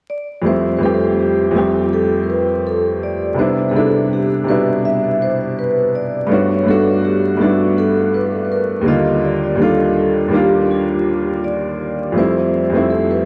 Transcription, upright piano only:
0.42 F2 G3 A3
0.47 C4 E4
0.79 F2 G3 A3
0.84 C4 G4
1.51 F2 G3 A3
1.56 C4 G4
3.34 C3 G3 B3
3.39 D4 E4
3.71 C3 G3 B3
3.77 D4 E4
4.44 B2 C3 G3
4.50 D4 E4
6.26 G2 A3 B3
6.32 D4 F#4
6.63 G2 A3 B3
6.69 D4 F#4
7.37 G2 A3 B3
7.42 D4 E4
8.81 D#2 G3 A#3
8.87 D3 F4
9.55 D#2 G3 A#3
9.61 D4 F4
10.28 D#2 G3 A#3
10.33 D4 F4
12.12 F2 G3 A3
12.18 C4 E4
12.70 F2 G3 A3
12.75 C4 E4

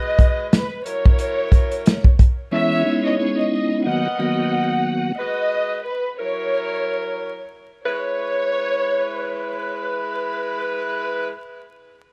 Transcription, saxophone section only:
Already playing: G#3 F#4 B4
0.86 F#3 E4 A#4
2.53 G#3 E4 C#5
3.86 B3 A#4 D#5
5.19 G#3 F#4 B4
6.19 F#3 E4 A#4
7.86 G#3 E4 B4

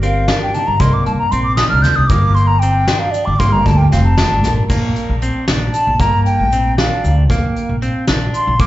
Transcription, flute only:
0.04 F5
0.42 G5
0.54 A5
0.67 A#5
0.80 C6
0.93 D6
1.06 A5
1.19 A#5
1.31 C6
1.43 D6
1.56 D#6
1.69 F6
1.82 G6
1.96 D#6
2.07 D6
2.35 C6
2.47 A#5
2.59 G5
2.99 F5
3.11 D5
3.25 D6
3.39 C6
3.52 A#5
3.66 A5
3.77 G5
3.92 F5
4.04 A5
5.73 A5
6.00 A#5
6.25 G5
6.79 F5
8.35 C6
8.60 D6

